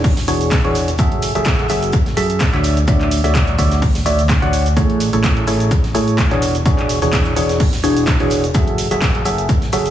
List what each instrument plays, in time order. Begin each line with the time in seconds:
Already playing: fingered electric bass E1
0.04 kick, closed hi-hat, open hi-hat, shaker
0.17 snare, open hi-hat
0.27 fingered electric bass E1, synth stab E3 D4 F#4 G#4 C#5, open hi-hat, shaker
0.41 closed hi-hat, shaker
0.51 kick, snare, clap, closed hi-hat, shaker
0.64 fingered electric bass E1, synth stab E3 D4 F#4 G#4 C#5, closed hi-hat
0.75 open hi-hat, shaker
0.88 closed hi-hat, shaker
0.98 fingered electric bass F#1, synth stab F#3 F#4 G#4 A4 E5, kick, closed hi-hat, shaker
1.12 closed hi-hat
1.22 open hi-hat, shaker
1.35 fingered electric bass F#1, synth stab F#3 F#4 G#4 A4 E5, closed hi-hat, shaker
1.45 kick, snare, clap, closed hi-hat, shaker
1.47 shaker
1.59 closed hi-hat
1.69 fingered electric bass F#1, synth stab F#3 F#4 G#4 A4 E5, open hi-hat, shaker
1.70 shaker
1.83 closed hi-hat, shaker
1.92 kick, closed hi-hat, shaker
1.94 shaker
2.06 snare, closed hi-hat
2.17 fingered electric bass F#2, synth stab F#3 F#4 G#4 A4 E5, open hi-hat, shaker
2.30 closed hi-hat, shaker
2.40 kick, snare, clap, closed hi-hat, shaker
2.41 shaker
2.53 fingered electric bass D2, synth stab D3 F#4 C#5 D5 E5, clap, closed hi-hat
2.64 open hi-hat, shaker
2.77 closed hi-hat, shaker
2.88 fingered electric bass D2, synth stab D3 F#4 C#5 D5 E5, kick, closed hi-hat, shaker
3.01 clap, closed hi-hat
3.11 open hi-hat, shaker
3.24 fingered electric bass D2, synth stab D3 F#4 C#5 D5 E5, snare, closed hi-hat, shaker
3.35 kick, snare, clap, closed hi-hat, shaker
3.47 closed hi-hat
3.58 fingered electric bass D2, synth stab D3 F#4 C#5 D5 E5, kick, open hi-hat, shaker
3.72 snare, closed hi-hat, shaker
3.82 kick, closed hi-hat, open hi-hat, shaker
3.95 snare, open hi-hat
4.06 fingered electric bass D2, synth stab D3 F#4 C#5 D5 E5, open hi-hat, shaker
4.19 closed hi-hat, shaker
4.29 kick, snare, clap, closed hi-hat, shaker
4.42 fingered electric bass D2, synth stab D3 F#4 C#5 D5 F#5, closed hi-hat
4.53 open hi-hat, shaker
4.66 closed hi-hat, shaker
4.76 fingered electric bass A1, synth stab A3 E4 G#4 A4 C#5, kick, closed hi-hat, shaker
4.90 closed hi-hat
5.00 open hi-hat, shaker
5.13 fingered electric bass A1, synth stab A3 E4 G#4 A4 C#5, closed hi-hat, shaker
5.24 kick, snare, clap, closed hi-hat, shaker
5.37 closed hi-hat
5.47 fingered electric bass A1, synth stab A3 E4 G#4 A4 C#5, open hi-hat, shaker
5.60 closed hi-hat, shaker
5.71 kick, closed hi-hat, shaker
5.84 snare, closed hi-hat
5.95 fingered electric bass A2, synth stab A3 E4 G#4 A4 C#5, open hi-hat, shaker
6.08 closed hi-hat, shaker
6.18 kick, snare, clap, closed hi-hat, shaker
6.31 fingered electric bass E1, synth stab E3 D4 F#4 G#4 C#5, clap, closed hi-hat
6.42 open hi-hat, shaker
6.55 closed hi-hat, shaker
6.66 fingered electric bass E1, synth stab E3 D4 F#4 G#4 C#5, kick, closed hi-hat, shaker
6.79 clap, closed hi-hat
6.89 open hi-hat, shaker
7.02 fingered electric bass E1, synth stab E3 D4 F#4 G#4 C#5, snare, closed hi-hat, shaker
7.13 kick, snare, clap, closed hi-hat, shaker
7.25 closed hi-hat
7.36 fingered electric bass E1, synth stab E3 D4 F#4 G#4 C#5, open hi-hat, shaker
7.49 snare, closed hi-hat, shaker
7.60 kick, closed hi-hat, open hi-hat, shaker
7.73 snare, open hi-hat
7.84 fingered electric bass E1, synth stab E3 D4 F#4 G#4 C#5, open hi-hat, shaker
7.97 closed hi-hat, shaker
8.07 kick, snare, clap, closed hi-hat, shaker
8.20 fingered electric bass E1, synth stab E3 D4 F#4 G#4 C#5, closed hi-hat
8.30 open hi-hat, shaker
8.44 closed hi-hat, shaker
8.54 fingered electric bass F#1, synth stab F#3 F#4 G#4 A4 E5, kick, closed hi-hat, shaker
8.67 closed hi-hat
8.78 open hi-hat, shaker
8.91 fingered electric bass F#1, synth stab F#3 F#4 G#4 A4 E5, closed hi-hat, shaker
9.02 kick, snare, clap, closed hi-hat, shaker
9.15 closed hi-hat
9.25 fingered electric bass F#1, synth stab F#3 F#4 G#4 A4 E5, open hi-hat, shaker
9.38 closed hi-hat, shaker
9.49 kick, closed hi-hat, shaker
9.62 snare, closed hi-hat
9.72 fingered electric bass F#1, synth stab F#3 F#4 G#4 A4 E5, open hi-hat, shaker
9.86 closed hi-hat, shaker